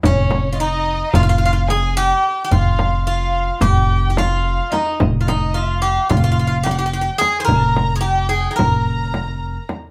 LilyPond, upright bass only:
\new Staff \with { instrumentName = "Upright bass" } { \clef bass \time 9/8 \tempo 4. = 73 f,,2 f,,2 r8 | f,,2 f,,2 r8 | f,,2 f,,2 r8 | f,,2 f,,2 r8 | }